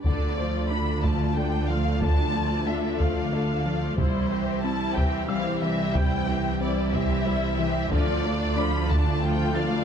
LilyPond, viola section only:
\new Staff \with { instrumentName = "Viola section" } { \time 6/8 \key d \dorian \tempo 4. = 61 <d d'>8 <f a>8 <d d'>8 <f a>8 <d d'>8 <f a>8 | <d d'>8 <f a>8 <d d'>8 <f a>8 <d d'>8 <f a>8 | <g e'>8 <e c'>8 <g e'>8 <e c'>8 <e g>8 <e c'>8 | <g e'>8 <e c'>8 <g e'>8 <e c'>8 <g e'>8 <e c'>8 |
<f f'>8 <a d'>8 <f f'>8 <a d'>8 <f f'>8 <a d'>8 | }